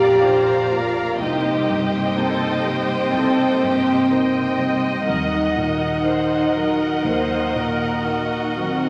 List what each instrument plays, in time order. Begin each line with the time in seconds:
Already playing: felt piano A#1 F2 A#3 D4 F4, cello section A#2, harp A#2 F3 A#3 D4 F4, french horn section G4, viola section A#4 D5, violin section D5 F5 A#5
0.23 felt piano D4 F4, violin section C5
0.56 harp D4
0.71 felt piano A#3, french horn section F4, violin section A#4
0.88 harp A#3
1.20 felt piano C2, harp C3, cello section C3, viola section A#3 C5, french horn section D#4, violin section G4 D#5 G5
1.53 harp G3
1.69 felt piano G2
1.85 harp D#4
2.16 felt piano A#3 D#4, french horn section C4, harp G4, violin section A4
2.50 harp D#4
2.65 felt piano G3, violin section G4
2.82 harp G3
3.13 felt piano C2, harp C3, violin section A4
3.46 harp A#3
3.62 felt piano G2, violin section G4
3.78 harp D#4
4.10 felt piano D#4 A#4, harp G4, violin section D#5
4.42 harp D#4
4.58 felt piano G3
4.75 harp G3
5.06 felt piano D#2, harp D#3, cello section D#3, french horn section D#4, viola section A#4, violin section D#5 F#5
5.40 harp A#3
5.56 felt piano A#2
5.72 harp F#4
6.04 felt piano D#4 A#4, harp A#4, violin section C5
6.38 harp F#4
6.54 felt piano F#3, violin section A#4
6.70 harp A#3
7.04 felt piano D#2, harp D#3, french horn section A#3, violin section C5
7.38 harp D#4
7.54 felt piano A#2, violin section A#4
7.72 harp F#4
8.05 felt piano D#4 A#4, violin section F#4, harp A#4
8.40 harp F#4
8.56 felt piano F#3, french horn section C4
8.75 harp A#3